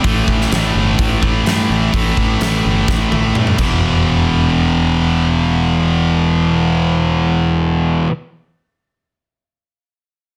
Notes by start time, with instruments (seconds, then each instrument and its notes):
0.03 fingered electric bass A1, distorted electric guitar A2 E3 A3, kick, open hi-hat
0.28 fingered electric bass A1, kick
0.41 snare
0.52 fingered electric bass A1, snare, open hi-hat
0.75 fingered electric bass G1
0.99 fingered electric bass A1, kick, open hi-hat
1.21 fingered electric bass A1, distorted electric guitar A2 E3 A3, kick
1.44 fingered electric bass G2, distorted electric guitar A2 E3 A3, snare, open hi-hat
1.70 fingered electric bass A1
1.91 fingered electric bass A1, distorted electric guitar A2 E3 A3, kick, open hi-hat
2.17 fingered electric bass A1, kick
2.41 fingered electric bass A1, snare, open hi-hat
2.65 fingered electric bass G1
2.88 fingered electric bass A1, kick, snare
3.11 fingered electric bass A1, distorted electric guitar A2 E3 A3, high tom
3.35 fingered electric bass G2, distorted electric guitar A2 E3 A3, mid tom
3.47 mid tom
3.57 fingered electric bass E1, distorted electric guitar E2 B2, kick, crash
3.61 distorted electric guitar E3